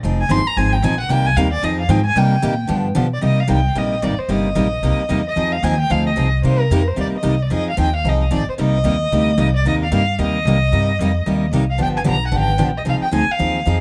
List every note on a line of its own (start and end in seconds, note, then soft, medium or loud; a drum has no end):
0.03 0.28 F1 medium
0.03 0.22 F3 medium
0.03 0.22 C4 medium
0.03 0.23 D#4 medium
0.03 0.23 G#4 medium
0.21 0.33 G#5 medium
0.29 0.44 G1 medium
0.29 0.40 F3 medium
0.29 0.40 C4 medium
0.29 0.41 D#4 loud
0.29 0.41 G#4 loud
0.29 0.49 C6 loud
0.47 0.59 A#5 loud
0.56 0.82 G#1 medium
0.56 0.75 F3 medium
0.56 0.76 C4 medium
0.56 0.76 D#4 medium
0.56 0.76 G#4 medium
0.56 0.74 G#5 loud
0.73 0.85 G5 medium
0.82 1.08 A#1 loud
0.82 0.94 F3 medium
0.82 0.94 C4 loud
0.82 0.94 D#4 loud
0.82 0.94 G#4 medium
0.82 0.99 G#5 loud
1.00 1.12 F#5 medium
1.09 1.35 C2 medium
1.09 1.28 C3 medium
1.09 1.28 G3 medium
1.09 1.28 A#3 medium
1.09 1.28 D#4 medium
1.09 1.29 G4 medium
1.09 1.28 G5 loud
1.26 1.38 G#5 loud
1.36 1.62 D#2 loud
1.36 1.47 C3 loud
1.36 1.47 G3 medium
1.36 1.47 A#3 medium
1.36 1.48 D#4 loud
1.36 1.47 G4 loud
1.36 1.52 F5 medium
1.53 1.65 D5 loud
1.62 1.88 F2 loud
1.62 1.81 F3 medium
1.62 1.82 C4 medium
1.62 1.82 D#4 medium
1.62 1.82 G#4 medium
1.62 1.79 D#5 medium
1.80 1.91 F5 medium
1.89 2.15 G#2 loud
1.89 2.00 F3 medium
1.89 2.00 C4 medium
1.89 2.00 D#4 medium
1.89 2.00 G#4 medium
1.89 2.05 G5 medium
2.06 2.19 G#5 loud
2.16 2.42 C3 medium
2.16 2.34 C3 medium
2.16 2.35 G3 medium
2.16 2.35 A#3 medium
2.16 2.35 D#4 medium
2.16 2.35 G4 medium
2.16 2.70 G5 loud
2.42 2.68 A#2 medium
2.42 2.53 C3 medium
2.42 2.53 G3 loud
2.42 2.53 A#3 medium
2.42 2.53 D#4 loud
2.42 2.53 G4 loud
2.67 2.95 G2 loud
2.67 2.87 D3 medium
2.67 2.87 F3 medium
2.67 2.87 B3 medium
2.67 2.88 D4 medium
2.67 2.87 G4 medium
2.95 3.22 B2 medium
2.95 3.06 D3 medium
2.95 3.06 F3 medium
2.95 3.06 B3 medium
2.95 3.06 D4 medium
2.95 3.06 G4 medium
3.14 3.23 D5 medium
3.21 3.40 C3 medium
3.21 3.48 C3 medium
3.21 3.41 G3 medium
3.21 3.41 A#3 medium
3.21 3.41 D#4 medium
3.21 3.41 G4 medium
3.21 3.41 D#5 medium
3.40 3.50 F5 medium
3.47 3.75 C2 medium
3.47 3.59 C3 medium
3.47 3.59 G3 medium
3.47 3.59 A#3 medium
3.47 3.59 D#4 medium
3.47 3.59 G4 medium
3.47 3.80 G5 medium
3.75 4.02 A#1 medium
3.75 3.94 C3 medium
3.75 3.94 G3 medium
3.75 3.95 A#3 medium
3.75 3.95 D#4 medium
3.75 3.95 G4 medium
3.75 4.05 D#5 medium
4.02 4.17 G#1 medium
4.02 4.13 C3 medium
4.02 4.13 G3 medium
4.02 4.13 A#3 medium
4.02 4.14 D#4 medium
4.02 4.14 G4 medium
4.02 4.20 D5 medium
4.18 4.32 C5 medium
4.18 muted upright bass stroke soft
4.28 4.55 G1 medium
4.28 4.48 C3 medium
4.28 4.48 G3 medium
4.28 4.48 A#3 medium
4.28 4.48 D#4 medium
4.28 4.48 G4 medium
4.28 5.26 D#5 medium
4.55 4.82 A#1 medium
4.55 4.66 C3 medium
4.55 4.66 G3 medium
4.55 4.66 A#3 medium
4.55 4.67 D#4 medium
4.55 4.67 G4 medium
4.83 4.97 C2 medium
4.83 5.02 C3 medium
4.83 5.02 G3 medium
4.83 5.02 A#3 medium
4.83 5.02 D#4 medium
4.83 5.02 G4 medium
5.09 5.36 E2 medium
5.09 5.20 C3 medium
5.09 5.20 G3 medium
5.09 5.20 A#3 medium
5.09 5.20 D#4 medium
5.09 5.21 G4 medium
5.27 5.54 D#5 medium
5.36 5.62 F2 medium
5.36 5.55 F3 medium
5.36 5.55 C4 medium
5.36 5.55 D#4 medium
5.36 5.55 G#4 medium
5.52 5.65 F5 medium
5.62 5.89 D#2 loud
5.62 5.74 F3 medium
5.62 5.74 C4 medium
5.62 5.74 D#4 loud
5.62 5.74 G#4 medium
5.62 5.79 G#5 medium
5.80 5.93 G5 loud
5.90 6.16 D2 medium
5.90 6.09 F3 medium
5.90 6.08 C4 medium
5.90 6.09 D#4 medium
5.90 6.09 G#4 medium
5.90 6.06 F5 medium
6.06 6.41 D#5 medium
6.16 6.43 C2 medium
6.16 6.27 F3 medium
6.16 6.27 C4 medium
6.16 6.27 D#4 medium
6.16 6.28 G#4 medium
6.43 6.62 C3 medium
6.43 6.70 C3 medium
6.43 6.63 G3 medium
6.43 6.63 A#3 medium
6.43 6.63 D#4 medium
6.43 6.63 G4 medium
6.43 6.61 C5 medium
6.60 6.89 A#4 medium
6.70 6.96 F2 medium
6.70 6.81 C3 medium
6.70 6.81 G3 medium
6.70 6.82 A#3 medium
6.70 6.82 D#4 medium
6.70 6.82 G4 loud
6.88 6.98 C5 medium
6.96 7.12 D#2 medium
6.96 7.15 C3 medium
6.96 7.16 G3 medium
6.96 7.16 A#3 medium
6.96 7.16 D#4 medium
6.96 7.16 G4 medium
7.01 7.07 D5 medium
7.13 7.44 D#5 medium
7.13 muted upright bass stroke soft
7.23 7.50 C2 medium
7.23 7.34 C3 medium
7.23 7.34 G3 medium
7.23 7.34 A#3 medium
7.23 7.34 D#4 medium
7.23 7.34 G4 medium
7.42 7.52 D5 medium
7.50 7.77 F2 medium
7.50 7.69 F3 medium
7.50 7.69 C4 medium
7.50 7.70 D#4 medium
7.50 7.70 G#4 medium
7.50 7.67 D#5 medium
7.70 7.79 F5 medium
7.77 8.04 D#2 medium
7.77 7.88 F3 medium
7.77 7.88 C4 medium
7.77 7.88 D#4 medium
7.77 7.88 G#4 medium
7.77 7.94 G5 medium
7.96 8.10 F5 medium
8.04 8.30 C2 medium
8.04 8.23 F3 medium
8.04 8.23 C4 medium
8.04 8.23 D#4 medium
8.04 8.24 G#4 medium
8.09 8.33 D#5 medium
8.31 8.46 G#1 medium
8.31 8.41 F3 medium
8.31 8.41 C4 medium
8.31 8.42 D#4 medium
8.31 8.42 G#4 medium
8.31 8.47 D5 medium
8.48 8.54 C5 medium
8.48 muted upright bass stroke soft
8.58 8.84 C2 medium
8.58 8.77 C3 medium
8.58 8.77 G3 medium
8.58 8.77 A#3 medium
8.58 8.77 D#4 medium
8.58 8.77 G4 medium
8.58 9.51 D#5 loud
8.84 9.11 D#2 medium
8.84 8.95 C3 medium
8.84 8.95 G3 medium
8.84 8.95 A#3 medium
8.84 8.95 D#4 loud
8.84 8.95 G4 medium
9.12 9.37 D2 medium
9.12 9.30 C3 medium
9.12 9.31 G3 medium
9.12 9.31 A#3 medium
9.12 9.31 D#4 medium
9.12 9.31 G4 medium
9.38 9.64 C2 medium
9.38 9.48 C3 medium
9.38 9.48 G3 medium
9.38 9.48 A#3 medium
9.38 9.49 D#4 medium
9.38 9.49 G4 medium
9.56 9.65 D5 medium
9.65 9.91 D#2 medium
9.65 9.84 C3 medium
9.65 9.84 G3 medium
9.65 9.84 A#3 medium
9.65 9.84 D#4 medium
9.65 9.85 G4 medium
9.65 9.74 D#5 loud
9.84 9.93 F5 medium
9.92 10.18 G2 medium
9.92 10.02 C3 medium
9.92 10.02 G3 medium
9.92 10.02 A#3 medium
9.92 10.02 D#4 medium
9.92 10.03 G4 loud
9.92 10.18 F5 loud
10.18 10.45 D#2 medium
10.18 10.37 C3 medium
10.18 10.37 G3 medium
10.18 10.37 A#3 medium
10.18 10.38 D#4 medium
10.18 10.38 G4 medium
10.18 11.50 D#5 loud
10.45 10.71 C2 loud
10.45 10.57 C3 medium
10.45 10.57 G3 medium
10.45 10.57 A#3 medium
10.45 10.57 D#4 medium
10.45 10.57 G4 medium
10.72 10.98 G2 medium
10.72 10.91 C3 medium
10.72 10.91 G3 medium
10.72 10.91 A#3 medium
10.72 10.91 D#4 medium
10.72 10.91 G4 medium
10.99 11.25 F2 medium
10.99 11.10 C3 medium
10.99 11.10 G3 medium
10.99 11.10 A#3 medium
10.99 11.11 D#4 medium
10.99 11.11 G4 medium
11.26 11.51 D#2 medium
11.26 11.45 C3 medium
11.26 11.45 G3 medium
11.26 11.45 A#3 medium
11.26 11.45 D#4 medium
11.26 11.45 G4 medium
11.52 11.78 C2 medium
11.52 11.63 C3 medium
11.52 11.63 G3 medium
11.52 11.63 A#3 medium
11.52 11.63 D#4 medium
11.52 11.64 G4 medium
11.70 11.80 F5 medium
11.78 12.05 G1 medium
11.78 11.97 D3 medium
11.78 11.97 F3 medium
11.78 11.98 B3 medium
11.78 11.98 D4 medium
11.78 11.98 G4 medium
11.78 11.88 G5 loud
11.97 12.02 G#5 medium
12.04 12.31 B1 medium
12.04 12.16 D3 medium
12.04 12.16 F3 medium
12.04 12.16 B3 medium
12.04 12.16 D4 medium
12.04 12.16 G4 medium
12.09 12.27 A#5 loud
12.27 12.38 F#5 medium
12.31 12.58 G#1 medium
12.31 12.51 D3 medium
12.31 12.51 F3 medium
12.31 12.51 B3 medium
12.31 12.51 D4 medium
12.31 12.51 G4 medium
12.36 12.61 G5 loud
12.58 12.85 A#1 medium
12.58 12.69 D3 medium
12.58 12.69 F3 medium
12.58 12.70 B3 medium
12.58 12.70 D4 medium
12.58 12.70 G4 medium
12.78 12.82 D#5 medium
12.85 13.00 C2 medium
12.85 13.04 F3 medium
12.85 13.04 C4 medium
12.85 13.05 D#4 medium
12.85 13.05 G#4 medium
12.85 12.95 F5 loud
13.01 13.13 G5 medium
13.01 muted upright bass stroke soft
13.11 13.27 D2 medium
13.11 13.23 F3 medium
13.11 13.23 C4 medium
13.11 13.23 D#4 medium
13.11 13.23 G#4 loud
13.11 13.33 G#5 loud
13.28 13.68 F5 loud
13.28 muted upright bass stroke soft
13.39 13.66 D#2 medium
13.39 13.58 F3 medium
13.39 13.58 C4 medium
13.39 13.58 D#4 medium
13.39 13.59 G#4 medium
13.65 13.81 F2 medium
13.65 13.76 F3 medium
13.65 13.77 C4 medium
13.65 13.77 D#4 medium
13.65 13.77 G#4 medium